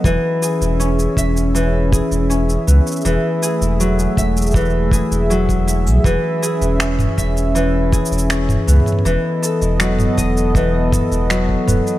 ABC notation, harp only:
X:1
M:4/4
L:1/8
Q:1/4=80
K:E
V:1 name="Harp"
E, G C e E, G C B, | E, G F, e E, G F, E | E, G C e E, G C B, | E, A F, d E, A F, B, |]